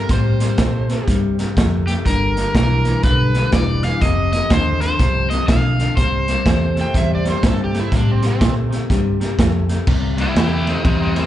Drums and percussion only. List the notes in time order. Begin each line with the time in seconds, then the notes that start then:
0.09 kick, snare, closed hi-hat
0.40 snare, closed hi-hat
0.58 kick, snare, closed hi-hat
0.90 snare, closed hi-hat
1.08 kick, snare, closed hi-hat
1.39 snare, closed hi-hat
1.57 kick, snare, closed hi-hat
1.88 snare, closed hi-hat
2.06 kick, snare, closed hi-hat
2.37 snare, closed hi-hat
2.55 kick, snare, closed hi-hat
2.85 snare, closed hi-hat
3.03 kick, snare, closed hi-hat
3.35 snare, closed hi-hat
3.52 kick, snare, closed hi-hat
3.83 snare, closed hi-hat
4.01 kick, snare, closed hi-hat
4.33 snare, closed hi-hat
4.50 kick, snare, closed hi-hat
4.81 snare, closed hi-hat
4.99 kick, snare, closed hi-hat
5.31 snare, closed hi-hat
5.48 kick, snare, closed hi-hat
5.80 snare, closed hi-hat
5.97 kick, snare, closed hi-hat
6.28 snare, closed hi-hat
6.46 kick, snare, closed hi-hat
6.77 snare, closed hi-hat
6.94 kick, snare, closed hi-hat
7.25 snare, closed hi-hat
7.43 kick, snare, closed hi-hat
7.75 snare, closed hi-hat
7.92 kick, snare, closed hi-hat
8.23 snare, closed hi-hat
8.41 kick, snare, closed hi-hat
8.72 snare, closed hi-hat
8.90 kick, snare, closed hi-hat
9.21 snare, closed hi-hat
9.39 kick, snare, closed hi-hat
9.69 snare, closed hi-hat
9.87 kick, snare, crash
10.18 snare, ride
10.36 snare, ride
10.67 snare, ride
10.85 kick, ride
11.16 snare, ride